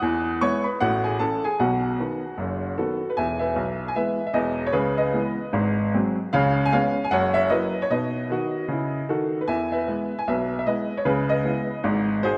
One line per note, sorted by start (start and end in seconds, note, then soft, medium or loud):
0.02 0.35 E2 medium
0.02 0.35 E3 medium
0.41 0.63 G#3 soft
0.41 0.63 B3 medium
0.41 0.64 E4 medium
0.41 0.64 C#5 medium
0.41 0.65 C#6 loud
0.64 0.79 B4 medium
0.64 0.80 B5 medium
0.80 1.14 A1 medium
0.80 1.14 A2 medium
0.80 1.03 F#4 medium
0.80 1.04 F#5 medium
1.04 1.19 G#4 medium
1.04 1.20 G#5 medium
1.19 1.41 E3 soft
1.19 1.42 C#4 soft
1.19 1.42 E4 soft
1.19 1.42 A4 medium
1.19 1.44 A5 medium
1.44 1.59 G#4 medium
1.44 1.59 G#5 medium
1.60 1.93 B1 medium
1.60 1.93 B2 medium
1.60 2.77 F#4 medium
1.60 3.02 F#5 medium
2.00 2.21 D#3 soft
2.00 2.22 B3 soft
2.38 2.72 F#1 medium
2.38 2.71 F#2 medium
2.78 2.99 D#3 soft
2.78 3.00 B3 soft
2.78 3.08 F#4 medium
2.78 3.09 A4 medium
3.10 3.17 B4 medium
3.17 3.49 E1 medium
3.17 3.49 E2 medium
3.17 3.38 E5 medium
3.17 3.41 G#5 medium
3.39 3.85 B4 medium
3.39 3.87 E5 medium
3.56 3.88 B1 medium
3.88 3.96 G#5 medium
3.96 4.18 E3 soft
3.96 4.17 G#3 soft
3.96 4.17 B3 soft
3.96 4.26 B4 medium
3.96 4.25 E5 medium
4.27 4.35 E5 medium
4.34 4.66 E1 medium
4.34 4.66 E2 medium
4.34 4.65 B4 medium
4.34 4.66 D#5 medium
4.67 4.75 C#5 medium
4.72 5.07 C#2 medium
4.72 5.07 C#3 medium
4.72 4.97 G#4 medium
4.72 4.97 B4 medium
4.98 5.89 B4 medium
4.98 5.93 D#5 medium
5.13 5.35 E3 soft
5.13 5.36 G#3 soft
5.13 5.36 B3 soft
5.53 5.87 G#1 medium
5.53 5.87 G#2 medium
5.94 6.16 F#3 medium
5.94 6.16 G#3 soft
5.94 6.16 C4 soft
6.33 6.67 C#2 medium
6.33 6.67 C#3 medium
6.33 6.63 C#5 medium
6.33 6.65 F5 medium
6.66 6.73 G#5 loud
6.73 6.94 G#3 medium
6.73 6.95 B3 medium
6.73 6.95 C#4 medium
6.73 7.03 C#5 medium
6.73 7.04 F5 medium
7.04 7.12 G#5 medium
7.11 7.45 F#1 medium
7.11 7.45 F#2 medium
7.11 7.34 C#5 medium
7.11 7.35 F#5 medium
7.34 7.50 C#5 medium
7.34 7.50 E5 loud
7.50 7.72 F#3 soft
7.50 7.73 A#3 soft
7.50 7.73 E4 medium
7.50 7.81 B4 medium
7.50 7.82 D#5 medium
7.82 7.90 C#5 medium
7.90 8.22 B2 medium
7.90 8.23 D#4 medium
7.90 9.06 B4 medium
7.90 9.09 D#5 medium
8.30 8.62 D#3 medium
8.30 8.63 F#4 medium
8.68 9.00 C#3 medium
8.68 9.02 E4 medium
9.09 9.41 D#3 medium
9.09 9.39 F#4 medium
9.09 9.41 A4 medium
9.41 9.49 B4 medium
9.48 9.82 E2 medium
9.48 9.82 E3 medium
9.48 9.70 E5 medium
9.48 9.72 G#5 medium
9.72 10.17 B4 medium
9.72 10.20 E5 medium
9.88 10.10 G#3 soft
9.88 10.10 B3 soft
9.88 10.10 E4 soft
10.19 10.27 G#5 medium
10.28 10.61 B1 medium
10.28 10.62 B2 medium
10.28 10.58 B4 medium
10.28 10.57 E5 medium
10.59 10.67 E5 medium
10.67 10.89 G#3 soft
10.67 10.89 B3 soft
10.67 10.89 E4 soft
10.67 10.97 B4 medium
10.67 10.99 D#5 medium
10.97 11.06 C#5 medium
11.05 11.39 C#2 medium
11.05 11.39 C#3 medium
11.05 11.29 G#4 medium
11.05 11.29 B4 medium
11.29 12.21 B4 medium
11.29 12.24 D#5 medium
11.44 11.67 G#3 soft
11.44 11.67 B3 soft
11.44 11.68 E4 soft
11.84 12.18 G#1 medium
11.84 12.18 G#2 medium
12.23 12.38 G#3 soft
12.23 12.38 D#4 medium
12.23 12.38 F#4 soft
12.23 12.38 G#4 medium
12.23 12.38 C5 medium